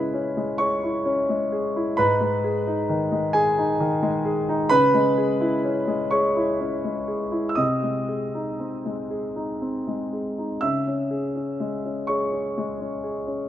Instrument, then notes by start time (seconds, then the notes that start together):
grand piano
Already playing: C#3 G#3 E4 G#4 B4 B5
0.14 C#4
0.37 G#3
0.58 G#4 C#5 C#6
0.84 E4
1.06 C#4
1.29 G#3
1.52 G#4
1.76 E4
1.97 G#2 B4 B5
2.21 G#3
2.44 G#4
2.67 D#4
2.89 D#3
3.12 G#3
3.33 G#4 G#5
3.58 D#4
3.80 D#3
4.02 G#3
4.25 G#4
4.49 D#4
4.69 C#3 B4 B5
4.94 G#3
5.18 G#4
5.41 E4
5.64 C#4
5.88 G#3
6.11 G#4 C#5 C#6
6.37 E4
6.60 C#4
6.84 G#3
7.08 G#4
7.32 E4
7.49 E6
7.55 C3 D#5 D#6
7.83 G#3
8.09 G#4
8.35 D#4
8.60 C4
8.86 G#3
9.11 G#4
9.36 D#4
9.62 C4
9.87 G#3
10.13 G#4
10.38 D#4
10.61 C#3 E5 E6
10.88 C#4
11.11 G#4
11.36 C#4
11.60 G#3
11.86 C#4
12.07 G#4 C#5 C#6
12.33 C#4
12.58 G#3
12.81 C#4
13.04 G#4
13.27 C#4